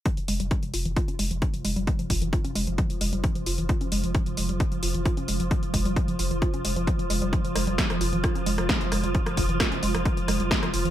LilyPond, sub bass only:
\new Staff \with { instrumentName = "Sub bass" } { \clef bass \time 4/4 \key aes \major \tempo 4 = 132 r16 f,,16 f,,16 f,,16 r16 f,,16 f,,16 f,,16 r16 f,,16 f,,16 f,,16 r16 f,,16 f,,16 f,,16 | r16 f,,16 f,,16 f,,16 r16 f,,16 f,,16 f,,16 r16 f,,16 f,,16 f,,16 r16 f,,16 f,,16 f,,16 | r16 f,,16 f,,16 f,,16 r16 f,,16 f,,16 f,,16 r16 f,,16 f,,16 f,,16 r16 f,,16 f,,16 f,,16 | r16 f,,16 f,,16 f,,16 r16 f,,16 f,,16 f,,16 r16 f,,16 f,,16 f,,16 r16 f,,16 f,,16 f,,16 |
r16 f,,16 f,,16 f,,16 r16 f,,16 f,,16 f,,16 r16 f,,16 f,,16 f,,16 r16 f,,16 f,,16 f,,16 | r16 f,,16 f,,16 f,,16 r16 f,,16 f,,16 f,,16 r16 f,,16 f,,16 f,,16 r16 f,,16 f,,16 f,,16 | }